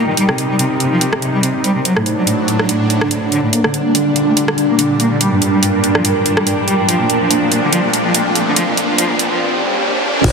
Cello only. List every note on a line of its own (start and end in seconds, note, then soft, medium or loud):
0.08 0.14 D#3 medium
0.17 0.25 G3 medium
0.29 0.35 C3 medium
0.38 0.46 C3 medium
0.50 0.56 G3 medium
0.59 0.67 C3 medium
0.71 0.77 C3 medium
0.80 0.88 C3 medium
0.92 0.98 F3 medium
1.01 1.09 C3 medium
1.13 1.19 C3 medium
1.22 1.30 C3 medium
1.33 1.40 G3 medium
1.43 1.51 C3 medium
1.54 1.61 C3 medium
1.64 1.72 G3 medium
1.75 1.82 C3 medium
1.85 1.93 F#3 medium
1.96 2.03 A2 medium
2.06 2.14 A2 medium
2.17 2.24 F#3 medium
2.27 2.35 A2 medium
2.38 2.45 A2 medium
2.48 2.56 A2 medium
2.59 2.66 F#3 medium
2.69 2.77 A2 medium
2.80 2.87 A2 medium
2.90 2.98 A2 medium
3.01 3.08 D3 medium
3.11 3.18 A2 medium
3.22 3.29 A2 medium
3.32 3.39 D3 medium
3.43 3.50 A2 medium
3.53 3.60 A#3 medium
3.64 3.71 D3 medium
3.74 3.81 D3 medium
3.85 3.92 A#3 medium
3.95 4.02 D3 medium
4.06 4.13 D3 medium
4.16 4.23 D3 medium
4.27 4.34 A3 medium
4.37 4.44 D3 medium
4.48 4.55 D3 medium
4.58 4.65 D3 medium
4.69 4.76 A#3 medium
4.79 4.86 D3 medium
4.90 4.97 D3 medium
5.00 5.07 A#3 medium
5.11 5.18 D3 medium
5.21 5.28 G3 medium
5.32 5.38 G2 medium
5.42 5.49 G2 medium
5.53 5.59 G3 medium
5.63 5.70 G2 medium
5.74 5.80 G2 medium
5.84 5.91 G2 medium
5.95 6.01 F3 medium
6.05 6.12 G2 medium
6.16 6.22 G2 medium
6.26 6.33 G2 medium
6.37 6.43 G3 medium
6.47 6.54 G2 medium
6.58 6.64 G2 medium
6.68 6.75 G3 medium
6.79 6.85 G2 medium
6.89 6.96 F3 medium
7.00 7.06 A#2 medium
7.10 7.17 A#2 medium
7.21 7.27 F3 medium
7.31 7.38 A#2 medium
7.42 7.48 A#2 medium
7.52 7.59 A#2 medium
7.63 7.69 D3 medium
7.72 7.80 F3 medium
7.84 7.90 A#2 medium
7.93 8.01 A#2 medium
8.05 8.11 F3 medium
8.14 8.22 A#2 medium
8.26 8.32 A#2 medium
8.35 8.43 A#2 medium
8.47 8.53 D3 medium
8.56 8.64 F3 loud
8.68 8.74 A#2 medium
8.77 8.85 A#2 medium
8.89 8.95 F3 medium
8.98 9.06 F3 loud
9.10 9.16 A#2 medium
9.19 9.27 A#2 medium
9.31 9.37 F3 medium